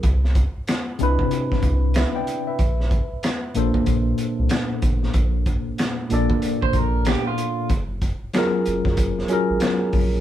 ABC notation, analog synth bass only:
X:1
M:4/4
L:1/16
Q:"Swing 16ths" 1/4=94
K:Bb
V:1 name="Analog synth bass" clef=bass
C,,3 C,, z2 C,, C,3 C,,3 z3 | B,,,3 B,,, z2 B,,, B,, B,,,2 z C,, z2 A,,,2 | B,,,3 B,,, z2 B,,, B,,3 B,,,3 z3 | _G,,,3 G,,, z2 G,,, _G,, G,,,2 z _A,,, z2 B,,,2 |]